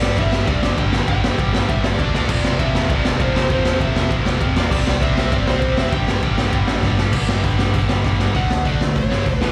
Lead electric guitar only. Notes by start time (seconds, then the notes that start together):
Already playing: D5
0.19 E5
0.47 D5
0.79 G5
1.09 G5
1.53 G5
1.69 E5
1.84 D5
2.16 D5
2.30 D5
2.60 E5
2.91 D5
3.21 C5
3.52 C5
3.82 E5
4.58 D5
4.72 D5
5.02 E5
5.33 D5
5.48 C5
5.78 E5
5.93 G5
8.36 F#5
8.66 D5
8.97 C#5
9.42 B4